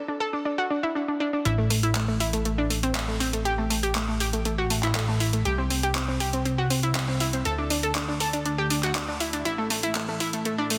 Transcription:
0.08 0.16 D4 medium
0.20 0.28 A4 medium
0.33 0.41 D4 medium
0.45 0.53 D4 medium
0.58 0.66 F#4 medium
0.70 0.78 D4 medium
0.83 0.91 E4 medium
0.95 1.03 D4 medium
1.08 1.16 D4 medium
1.20 1.28 D4 medium
1.33 1.41 D4 medium
1.45 5.43 A1 medium
1.45 1.53 E4 loud
1.45 closed hi-hat medium
1.58 1.66 A3 medium
1.70 1.78 A3 medium
1.70 open hi-hat loud
1.83 1.91 E4 loud
1.83 closed hi-hat medium
1.95 2.03 A3 medium
1.95 clap loud
1.95 closed hi-hat medium
2.08 2.16 A3 medium
2.20 2.28 E4 medium
2.20 open hi-hat loud
2.33 2.41 A3 medium
2.33 closed hi-hat medium
2.45 2.53 A3 medium
2.45 closed hi-hat medium
2.58 2.66 D4 medium
2.70 2.78 A3 medium
2.70 open hi-hat loud
2.83 2.91 C4 medium
2.83 closed hi-hat medium
2.95 3.03 A3 medium
2.95 clap loud
2.95 closed hi-hat medium
3.08 3.16 A3 medium
3.20 3.28 C4 medium
3.20 open hi-hat loud
3.33 3.41 A3 medium
3.33 closed hi-hat medium
3.45 3.53 G4 loud
3.45 closed hi-hat soft
3.58 3.66 A3 medium
3.70 3.78 A3 medium
3.70 open hi-hat loud
3.83 3.91 G4 loud
3.83 closed hi-hat medium
3.95 4.03 A3 medium
3.95 clap loud
3.95 closed hi-hat soft
4.08 4.16 A3 medium
4.20 4.28 G4 loud
4.20 open hi-hat loud
4.33 4.41 A3 medium
4.33 closed hi-hat medium
4.45 4.53 A3 medium
4.45 closed hi-hat medium
4.58 4.66 F#4 medium
4.70 4.78 A3 medium
4.70 open hi-hat loud
4.83 4.91 E4 medium
4.83 clap soft
4.83 closed hi-hat medium
4.95 5.03 A3 medium
4.95 clap loud
4.95 closed hi-hat medium
5.08 5.16 A3 medium
5.20 5.28 E4 medium
5.20 open hi-hat loud
5.33 5.41 A3 medium
5.33 closed hi-hat medium
5.45 7.43 C2 medium
5.45 5.53 G4 loud
5.45 closed hi-hat soft
5.58 5.66 C4 medium
5.70 5.78 C4 medium
5.70 open hi-hat loud
5.83 5.91 G4 medium
5.83 closed hi-hat medium
5.95 6.04 C4 medium
5.95 clap loud
5.95 closed hi-hat soft
6.08 6.16 C4 medium
6.20 6.28 G4 loud
6.20 open hi-hat loud
6.33 6.41 C4 medium
6.33 closed hi-hat medium
6.45 6.53 C4 medium
6.45 closed hi-hat soft
6.58 6.66 F#4 medium
6.70 6.78 C4 medium
6.70 open hi-hat loud
6.83 6.91 E4 medium
6.83 closed hi-hat medium
6.95 7.03 C4 medium
6.95 clap loud
6.95 closed hi-hat medium
7.08 7.16 C4 medium
7.20 7.28 E4 medium
7.20 open hi-hat loud
7.33 7.41 C4 medium
7.33 closed hi-hat medium
7.45 9.43 D2 medium
7.45 7.53 A4 loud
7.45 closed hi-hat soft
7.58 7.66 D4 medium
7.70 7.78 D4 medium
7.70 open hi-hat loud
7.83 7.91 A4 medium
7.83 closed hi-hat medium
7.95 8.04 D4 medium
7.95 clap loud
7.95 closed hi-hat soft
8.08 8.16 D4 medium
8.20 8.29 A4 medium
8.20 open hi-hat loud
8.33 8.41 D4 medium
8.33 closed hi-hat medium
8.46 8.54 D4 medium
8.46 closed hi-hat soft
8.58 8.66 G4 medium
8.70 8.78 D4 medium
8.70 open hi-hat loud
8.83 8.91 F#4 loud
8.83 clap soft
8.83 closed hi-hat medium
8.95 9.03 D4 medium
8.95 clap loud
8.95 closed hi-hat medium
9.08 9.16 D4 medium
9.20 9.28 E4 medium
9.20 open hi-hat loud
9.33 9.41 D4 medium
9.33 closed hi-hat medium
9.45 10.78 A1 medium
9.45 9.53 E4 loud
9.45 closed hi-hat medium
9.58 9.66 A3 medium
9.70 9.78 A3 medium
9.70 open hi-hat loud
9.83 9.91 E4 loud
9.83 closed hi-hat medium
9.95 10.03 A3 medium
9.95 clap loud
9.95 closed hi-hat soft
10.08 10.16 A3 medium
10.20 10.29 E4 medium
10.20 open hi-hat loud
10.33 10.41 A3 medium
10.33 closed hi-hat medium
10.45 10.54 A3 medium
10.45 closed hi-hat soft
10.58 10.66 D4 medium
10.70 10.78 A3 medium
10.70 open hi-hat loud

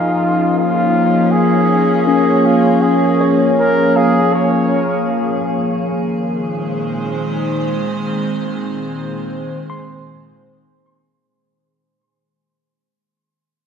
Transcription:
0.00 5.11 F3 medium
0.00 6.59 A#3 medium
0.00 5.11 C#4 medium
0.00 0.93 D#4 medium
0.00 0.56 F4 medium
0.00 11.23 G#4 medium
0.00 0.74 A#4 medium
0.59 1.33 F4 medium
0.87 5.11 C#5 medium
1.31 2.06 G#4 medium
2.07 3.88 C#4 medium
2.07 2.47 G#4 medium
2.46 2.83 F4 medium
2.82 3.32 G#4 medium
3.21 3.93 C#5 medium
3.60 3.98 A#4 loud
3.96 4.35 G#4 medium
3.96 5.77 F5 medium
4.34 5.10 C#5 medium
5.10 11.23 A#2 medium
5.35 11.24 G#3 medium
5.53 11.24 D#3 medium
5.83 11.24 C5 medium
6.08 11.25 C4 medium
9.70 11.40 C6 medium

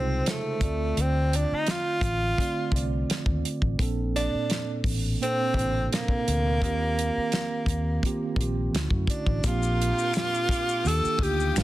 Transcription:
0.00 0.21 C2 medium
0.00 0.60 C3 medium
0.00 0.63 C#3 medium
0.00 0.64 G#3 medium
0.00 0.31 C4 medium
0.00 0.63 D#4 medium
0.00 0.62 F4 medium
0.00 0.61 G#4 medium
0.00 0.63 C5 medium
0.26 1.02 A3 medium
0.26 snare loud
0.26 closed hi-hat medium
0.59 0.92 D2 medium
0.59 1.86 D3 medium
0.59 1.87 A3 medium
0.59 1.87 C4 medium
0.59 1.88 F4 medium
0.59 kick loud
0.59 closed hi-hat medium
0.64 1.89 D5 medium
0.97 1.44 D2 medium
0.97 1.37 C4 medium
0.97 closed hi-hat medium
1.33 1.56 D4 medium
1.33 closed hi-hat medium
1.52 1.72 D#4 medium
1.52 muted fingered electric bass stroke soft
1.67 3.10 F4 loud
1.67 snare medium
1.67 closed hi-hat medium
2.01 2.33 A1 medium
2.01 kick medium
2.01 closed hi-hat medium
2.36 2.69 D3 medium
2.36 2.69 A3 medium
2.36 2.70 C4 medium
2.36 2.71 F4 medium
2.36 kick medium
2.36 closed hi-hat medium
2.42 2.71 D5 medium
2.71 3.03 C2 medium
2.71 3.67 D3 medium
2.71 3.67 A3 medium
2.71 3.68 C4 medium
2.71 3.69 F4 medium
2.71 kick medium
2.76 3.69 D5 medium
2.76 closed hi-hat medium
3.10 muted fingered electric bass stroke soft
3.10 snare loud
3.10 closed hi-hat medium
3.26 3.41 D#2 medium
3.26 kick medium
3.45 closed hi-hat medium
3.62 3.77 A1 medium
3.62 kick medium
3.77 4.26 A#1 medium
3.77 5.05 A#2 medium
3.77 5.05 A#3 medium
3.77 5.06 C4 medium
3.77 5.06 D4 medium
3.77 kick loud
3.77 closed hi-hat medium
3.82 5.07 A4 medium
4.16 4.82 D4 medium
4.16 closed hi-hat medium
4.34 muted fingered electric bass stroke soft
4.50 snare medium
4.50 closed hi-hat medium
4.84 5.15 A1 medium
4.84 kick medium
4.84 open hi-hat medium
5.19 5.51 A#2 medium
5.19 5.52 A#3 medium
5.19 5.52 C4 medium
5.19 5.88 C4 loud
5.19 5.53 D4 medium
5.19 closed hi-hat medium
5.24 5.54 A4 medium
5.54 5.86 A1 medium
5.54 6.49 C3 medium
5.54 6.50 A#3 medium
5.54 6.50 C4 medium
5.54 6.51 D4 medium
5.54 kick medium
5.58 6.51 F4 medium
5.58 closed hi-hat medium
5.93 8.70 A#3 medium
5.93 snare loud
5.93 closed hi-hat medium
6.08 kick medium
6.28 6.62 D2 medium
6.28 closed hi-hat medium
6.60 7.09 D#2 medium
6.60 7.87 D#3 medium
6.60 7.88 A#3 medium
6.60 7.88 C4 medium
6.60 7.89 F4 medium
6.60 kick loud
6.60 closed hi-hat medium
6.65 7.89 G4 medium
6.99 closed hi-hat medium
7.17 muted fingered electric bass stroke soft
7.32 snare medium
7.32 closed hi-hat medium
7.66 7.98 D#2 medium
7.66 kick medium
7.66 closed hi-hat medium
8.01 8.33 D#3 medium
8.01 8.34 A#3 medium
8.01 8.35 C4 medium
8.01 8.35 F4 medium
8.01 kick medium
8.01 closed hi-hat medium
8.06 8.36 G4 medium
8.36 8.68 A#1 medium
8.36 8.72 D#3 medium
8.36 8.73 A#3 medium
8.36 8.73 C4 medium
8.36 kick medium
8.40 8.74 F4 medium
8.40 8.74 G4 medium
8.40 closed hi-hat medium
8.71 8.90 D2 medium
8.71 9.35 D3 medium
8.71 9.36 A3 medium
8.71 9.37 C#4 medium
8.71 closed hi-hat medium
8.75 9.37 E4 medium
8.75 9.38 F#4 medium
8.75 snare loud
8.90 9.06 F#2 medium
8.90 kick medium
9.07 9.48 D4 medium
9.07 kick medium
9.07 closed hi-hat medium
9.27 9.41 A1 medium
9.27 kick medium
9.43 9.91 A#1 loud
9.43 10.69 A#2 medium
9.43 10.70 A#3 medium
9.43 10.71 C4 medium
9.43 10.71 D4 medium
9.43 10.83 A#4 medium
9.43 10.83 G5 medium
9.43 10.84 C6 medium
9.43 11.53 D6 medium
9.43 kick loud
9.43 closed hi-hat medium
9.43 maracas medium
9.47 10.89 F4 loud
9.47 10.72 G4 medium
9.63 maracas soft
9.82 closed hi-hat medium
9.99 maracas soft
10.14 finger snap medium
10.14 snare loud
10.14 closed hi-hat medium
10.14 maracas medium
10.34 maracas soft
10.49 kick medium
10.49 closed hi-hat medium
10.49 maracas soft
10.69 maracas medium
10.84 11.02 D#2 loud
10.84 11.16 D#3 medium
10.84 11.16 A#3 medium
10.84 11.17 D4 medium
10.84 11.18 F4 medium
10.84 11.25 A4 loud
10.84 11.63 F5 medium
10.84 11.63 G5 medium
10.84 11.55 D#6 medium
10.84 maracas medium
10.88 11.18 G4 medium
10.88 closed hi-hat medium
11.05 muted fingered electric bass stroke soft
11.05 maracas soft
11.18 11.50 D2 medium
11.18 11.55 A#3 medium
11.18 11.54 D4 medium
11.18 11.54 D#4 medium
11.18 11.55 F4 medium
11.18 kick medium
11.23 11.57 G4 medium
11.23 11.61 G4 loud
11.23 closed hi-hat medium
11.40 maracas soft
11.54 11.63 G1 medium
11.54 11.63 G3 medium
11.54 11.63 D4 medium
11.54 11.63 F4 medium
11.54 11.63 G#4 medium
11.54 11.63 G#5 medium
11.54 11.63 B5 medium
11.54 finger snap medium
11.54 snare loud
11.54 closed hi-hat medium
11.54 maracas medium
11.59 11.63 F4 loud
11.59 11.63 B4 medium

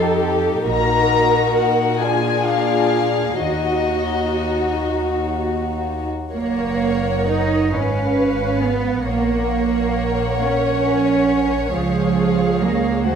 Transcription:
0.00 0.67 F2 medium
0.00 0.65 D#4 soft
0.00 0.68 G4 soft
0.00 0.68 A4 soft
0.67 1.52 A#1 soft
0.67 3.39 A#2 soft
0.67 1.99 D#4 medium
0.67 1.99 F#4 soft
0.67 1.98 A#4 medium
0.67 1.52 A#5 medium
1.56 2.00 F#5 medium
2.00 3.43 D4 soft
2.00 3.43 F4 soft
2.00 3.44 G#4 soft
2.00 2.47 G#5 medium
2.46 3.43 F5 medium
3.41 4.36 D#2 soft
3.41 6.07 D#2 soft
3.41 6.07 D#4 soft
3.41 6.07 F#4 soft
3.41 5.57 F#4 soft
3.41 4.86 D#5 medium
6.31 7.68 F#1 soft
6.31 7.23 A#3 medium
6.31 7.69 A#4 soft
6.31 7.69 C#5 soft
6.31 7.69 F#5 soft
7.28 7.73 D#4 medium
7.71 9.07 G#1 medium
7.71 8.62 C#4 soft
7.71 9.03 B4 soft
7.71 9.04 B4 soft
7.71 9.03 F5 soft
8.61 9.07 B3 medium
9.05 11.70 A#1 soft
9.05 10.41 A#3 medium
9.05 11.70 A#4 soft
9.05 13.01 C#5 soft
9.05 11.70 F#5 soft
10.43 11.74 C#4 medium
11.74 13.04 C#2 soft
11.74 12.60 F3 medium
11.74 13.03 G#4 medium
11.74 13.03 F5 medium
12.62 13.07 A#3 medium
13.05 13.15 D#2 medium
13.05 13.15 G#3 medium
13.05 13.15 F#4 soft
13.05 13.15 C5 medium
13.05 13.15 F#5 medium

